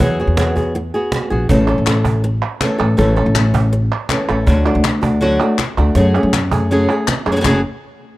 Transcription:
0.00 0.23 E2 loud
0.00 0.18 E3 medium
0.00 0.18 F#3 medium
0.00 0.18 B3 medium
0.00 0.18 F#4 medium
0.00 0.18 G#4 medium
0.00 cajon bass loud
0.20 0.37 B3 soft
0.20 0.37 F#4 medium
0.20 0.37 G#4 medium
0.27 0.90 E2 loud
0.37 0.55 F#3 soft
0.37 0.56 B3 medium
0.37 0.55 F#4 medium
0.37 0.54 G#4 medium
0.37 cajon slap loud
0.56 0.74 B3 soft
0.56 0.74 F#4 soft
0.56 0.74 G#4 medium
0.56 cajon bass medium
0.56 cajon slap soft
0.75 muted nylon-string guitar stroke medium
0.94 1.31 B3 soft
0.94 1.31 F#4 medium
0.94 1.29 G#4 medium
1.12 cajon slap loud
1.30 1.46 A#1 medium
1.30 1.49 B3 soft
1.30 1.49 F#4 medium
1.30 1.48 G#4 medium
1.49 1.73 A1 loud
1.49 1.67 C#3 medium
1.49 1.67 E3 medium
1.49 1.67 A3 medium
1.49 1.67 C#4 medium
1.49 1.67 A4 loud
1.49 cajon bass loud
1.68 1.87 A3 soft
1.68 1.86 C#4 medium
1.68 1.86 A4 medium
1.78 2.39 A1 medium
1.86 2.23 A3 soft
1.86 2.23 C#4 medium
1.86 2.23 A4 medium
1.86 cajon slap loud
1.86 clap loud
2.05 cajon bass medium
2.24 muted nylon-string guitar stroke medium
2.61 2.79 E3 medium
2.61 2.79 A3 medium
2.61 2.78 C#4 medium
2.61 2.77 A4 medium
2.61 cajon slap loud
2.61 clap medium
2.78 2.95 A1 medium
2.78 2.97 A3 soft
2.78 2.97 C#4 medium
2.78 2.97 A4 medium
2.97 3.21 A1 loud
2.97 3.15 C#3 medium
2.97 3.16 E3 medium
2.97 3.16 A3 medium
2.97 3.16 C#4 medium
2.97 3.15 A4 medium
2.97 cajon bass loud
2.97 cajon slap soft
3.16 3.35 A3 medium
3.16 3.35 C#4 medium
3.16 3.34 A4 medium
3.26 3.88 A1 loud
3.35 3.72 A3 soft
3.35 3.72 C#4 medium
3.35 3.72 A4 medium
3.35 cajon slap loud
3.35 clap medium
3.54 cajon bass medium
3.73 muted nylon-string guitar stroke medium
4.09 4.27 E3 medium
4.09 4.27 A3 medium
4.09 4.28 C#4 medium
4.09 4.28 A4 medium
4.09 cajon slap loud
4.09 clap medium
4.28 4.44 A1 medium
4.28 4.47 A3 medium
4.28 4.47 C#4 medium
4.28 4.46 A4 medium
4.28 cajon slap soft
4.47 4.70 D2 loud
4.47 4.65 D3 medium
4.47 4.65 F#3 medium
4.47 4.65 A3 medium
4.47 4.65 D4 medium
4.47 4.64 F#4 medium
4.47 cajon bass loud
4.47 cajon slap soft
4.66 4.84 A3 soft
4.66 4.84 D4 medium
4.66 4.83 F#4 medium
4.75 5.37 D2 loud
4.84 muted nylon-string guitar stroke medium
4.84 cajon slap loud
4.84 clap medium
5.02 5.21 A3 soft
5.02 5.21 D4 medium
5.02 5.20 F#4 medium
5.02 cajon bass medium
5.21 5.39 D3 medium
5.21 5.39 F#3 medium
5.21 5.39 A3 medium
5.21 5.40 D4 medium
5.21 5.40 F#4 loud
5.41 5.58 A3 medium
5.41 5.58 D4 medium
5.41 5.58 F#4 medium
5.58 muted nylon-string guitar stroke medium
5.58 cajon slap loud
5.58 clap medium
5.78 5.93 D2 medium
5.78 5.96 A3 medium
5.78 5.95 D4 medium
5.78 5.95 F#4 medium
5.78 clap medium
5.95 6.19 F#2 loud
5.95 6.13 C#3 medium
5.95 6.14 F#3 medium
5.95 6.14 A3 medium
5.95 6.14 C#4 medium
5.95 6.14 G#4 medium
5.95 cajon bass loud
5.95 cajon slap soft
6.16 6.33 A3 soft
6.16 6.33 C#4 medium
6.16 6.33 G#4 medium
6.23 6.85 F#2 loud
6.33 muted nylon-string guitar stroke medium
6.33 cajon slap loud
6.33 clap loud
6.52 6.70 A3 soft
6.52 6.70 C#4 medium
6.52 6.70 G#4 medium
6.52 cajon bass medium
6.71 6.88 C#3 medium
6.71 6.88 F#3 medium
6.71 6.88 A3 medium
6.71 6.89 C#4 medium
6.71 6.89 G#4 loud
6.90 7.08 A3 medium
6.90 7.08 C#4 medium
6.90 7.07 G#4 medium
7.08 muted nylon-string guitar stroke medium
7.08 cajon slap loud
7.08 clap medium
7.26 7.41 F#2 medium
7.26 7.31 A3 soft
7.26 7.31 C#4 medium
7.26 7.32 G#4 medium
7.32 7.35 C#3 medium
7.32 7.35 F#3 medium
7.32 7.35 A3 soft
7.32 7.36 C#4 medium
7.32 7.36 G#4 medium
7.36 7.40 C#3 medium
7.36 7.40 F#3 medium
7.36 7.40 A3 medium
7.36 7.40 C#4 medium
7.36 7.41 G#4 medium
7.41 7.62 F#1 medium
7.41 7.44 C#3 medium
7.41 7.45 F#3 medium
7.41 7.44 A3 medium
7.41 7.45 C#4 medium
7.41 7.45 G#4 medium
7.41 cajon bass loud
7.41 clap loud
7.45 7.60 F#2 medium
7.45 7.60 C#3 medium
7.45 7.60 F#3 medium
7.45 7.60 A3 medium
7.45 7.60 C#4 medium
7.45 7.60 G#4 medium

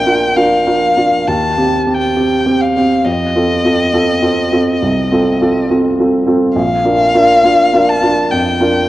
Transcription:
0.00 1.30 A#1 soft
0.00 0.06 D4 soft
0.00 0.06 F4 soft
0.00 0.07 A#4 soft
0.00 0.38 G5 medium
0.06 0.34 D4 soft
0.06 0.34 F4 soft
0.06 0.34 A#4 soft
0.36 0.64 D4 soft
0.36 0.65 F4 soft
0.36 0.65 A#4 soft
0.36 1.30 F5 medium
0.67 0.94 D4 soft
0.67 0.95 F4 soft
0.67 0.95 A#4 soft
0.97 1.24 D4 soft
0.97 1.25 F4 soft
0.97 1.25 A#4 soft
1.28 1.57 D#2 soft
1.28 1.96 A5 medium
1.58 1.84 C4 soft
1.58 1.84 G4 soft
1.87 2.14 C4 soft
1.87 2.14 G4 soft
1.94 2.63 G5 medium
2.17 2.43 C4 soft
2.17 2.43 G4 soft
2.46 2.73 C4 soft
2.46 2.74 G4 soft
2.61 3.07 F5 medium
2.77 3.03 C4 soft
2.77 3.04 G4 soft
3.05 3.35 F2 soft
3.05 5.70 D#5 medium
3.36 3.62 C4 soft
3.36 3.62 F4 soft
3.36 3.62 A4 soft
3.65 3.91 C4 soft
3.65 3.91 F4 soft
3.65 3.91 A4 soft
3.93 4.20 C4 soft
3.93 4.20 F4 soft
3.93 4.20 A4 soft
4.22 4.49 C4 soft
4.22 4.49 F4 soft
4.22 4.50 A4 soft
4.52 4.79 C4 soft
4.52 4.79 F4 soft
4.52 4.80 A4 soft
4.82 5.11 C2 soft
5.11 5.38 C4 soft
5.11 5.38 F4 soft
5.11 5.39 A4 soft
5.41 5.67 C4 soft
5.41 5.67 F4 soft
5.41 5.68 A4 soft
5.70 5.96 C4 soft
5.70 5.96 F4 soft
5.70 5.96 A4 soft
5.99 6.25 C4 soft
5.99 6.25 F4 soft
5.99 6.25 A4 soft
6.26 6.53 C4 soft
6.26 6.54 F4 soft
6.26 6.54 A4 soft
6.56 6.85 A#1 soft
6.56 7.90 F5 medium
6.85 7.12 D4 soft
6.85 7.12 F4 soft
6.85 7.12 A#4 soft
7.14 7.41 D4 soft
7.14 7.41 F4 soft
7.14 7.42 A#4 soft
7.44 7.71 D4 soft
7.44 7.71 F4 soft
7.44 7.71 A#4 soft
7.74 8.00 D4 soft
7.74 8.00 F4 soft
7.74 8.00 A#4 soft
7.89 8.32 A5 medium
8.03 8.29 D4 soft
8.03 8.29 F4 soft
8.03 8.29 A#4 soft
8.31 8.60 F2 soft
8.31 8.89 G5 medium
8.61 8.86 D4 soft
8.61 8.87 F4 soft
8.61 8.87 A#4 soft

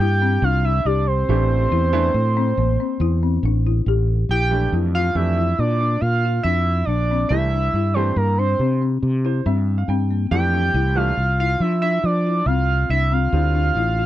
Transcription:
0.00 0.37 G2 medium
0.00 0.17 E4 medium
0.00 0.45 G5 loud
0.22 0.38 C4 medium
0.42 0.80 C2 medium
0.42 0.60 D4 medium
0.42 0.66 F5 loud
0.64 0.81 E4 medium
0.64 0.87 E5 medium
0.85 1.23 C2 medium
0.85 1.18 G4 medium
0.85 1.08 D5 medium
1.07 3.87 C5 medium
1.29 1.66 A1 medium
1.29 1.89 E3 medium
1.29 1.89 A3 medium
1.29 1.89 D4 medium
1.29 1.62 D4 medium
1.29 1.89 G4 medium
1.72 2.09 E2 loud
1.72 1.88 E4 medium
1.93 2.08 E3 medium
1.93 2.08 A3 medium
1.93 2.08 D4 medium
1.93 2.26 D4 medium
1.93 2.08 E4 medium
2.14 2.52 A2 medium
2.37 2.53 C4 medium
2.57 2.76 A1 medium
2.57 2.74 A#3 medium
2.80 2.96 C4 medium
3.00 3.37 E2 medium
3.00 3.17 E4 medium
3.23 3.39 C4 medium
3.43 3.80 A1 medium
3.43 3.61 D4 medium
3.67 3.82 E4 medium
3.86 4.24 A1 medium
3.86 4.20 G4 medium
4.29 4.66 A#1 medium
4.29 4.47 E4 medium
4.29 4.70 G5 loud
4.51 5.11 E3 medium
4.51 5.11 A3 soft
4.51 5.12 D4 soft
4.51 4.68 D4 medium
4.51 5.12 G4 medium
4.72 5.10 F2 medium
4.72 4.90 E4 medium
4.95 5.27 F4 medium
4.95 5.17 F5 medium
5.15 5.52 F2 medium
5.15 5.46 E3 medium
5.15 5.46 A3 medium
5.15 5.46 D4 medium
5.15 5.46 G4 medium
5.15 5.60 E5 medium
5.38 5.54 E4 medium
5.59 5.96 A#2 medium
5.59 5.75 D4 medium
5.59 6.02 D5 medium
5.81 6.13 D4 medium
6.01 6.39 A#2 medium
6.01 6.43 F5 loud
6.25 6.41 F4 medium
6.43 6.82 F2 medium
6.43 6.78 D4 medium
6.43 6.87 E5 medium
6.85 7.25 A#1 medium
6.85 7.05 D4 medium
6.85 7.28 D5 medium
7.11 7.27 C4 medium
7.29 7.68 C2 loud
7.29 7.46 E3 medium
7.29 7.46 A3 medium
7.29 7.46 D4 medium
7.29 7.48 E4 medium
7.29 7.46 G4 medium
7.29 7.96 E5 loud
7.54 7.70 D4 medium
7.73 8.11 G2 medium
7.73 7.91 E4 medium
7.94 8.11 E3 medium
7.94 8.11 A3 medium
7.94 8.11 D4 medium
7.94 8.29 E4 medium
7.94 8.11 G4 medium
7.94 8.18 C5 medium
8.16 8.54 G2 medium
8.16 8.39 A#4 medium
8.38 8.55 D4 medium
8.38 8.81 C5 medium
8.59 8.97 C3 medium
8.59 8.77 C4 medium
8.82 9.14 C4 medium
9.03 9.40 C3 medium
9.25 9.41 E4 medium
9.25 9.45 C5 medium
9.46 9.83 G2 medium
9.46 9.79 C4 medium
9.46 9.76 E5 medium
9.78 9.88 F5 medium
9.88 10.25 G2 medium
9.88 10.06 C4 medium
9.88 10.29 G5 medium
10.11 10.27 A#3 medium
10.31 10.69 F2 medium
10.31 10.92 E3 medium
10.31 10.92 A3 medium
10.31 10.92 D4 medium
10.31 10.49 E4 medium
10.31 10.92 G4 medium
10.31 10.98 G5 loud
10.54 10.70 D4 medium
10.74 11.12 C2 loud
10.74 10.91 E4 medium
10.95 11.11 E3 medium
10.95 11.11 A3 medium
10.95 11.11 D4 medium
10.95 11.29 F4 medium
10.95 11.12 G4 medium
10.95 11.39 F5 loud
11.17 11.55 C2 medium
11.40 11.56 E4 medium
11.40 11.62 F5 loud
11.60 11.97 F3 medium
11.60 11.77 D4 medium
11.60 11.81 E5 medium
11.82 12.15 D4 medium
11.82 12.06 E5 medium
12.04 12.41 F3 medium
12.04 12.47 D5 medium
12.27 12.42 E4 medium
12.46 12.83 C2 medium
12.46 12.80 C4 medium
12.46 12.89 F5 loud
12.89 13.27 C2 medium
12.89 13.07 D4 medium
12.89 13.14 E5 loud
13.12 13.28 C4 medium
13.12 14.06 F5 loud
13.33 13.70 D2 medium
13.33 13.93 D3 medium
13.33 13.93 G3 medium
13.33 13.93 C4 medium
13.33 13.50 E4 medium
13.33 13.93 F4 medium
13.55 13.71 D4 medium
13.75 14.06 A1 medium
13.75 13.93 E4 medium
13.99 14.06 F4 medium

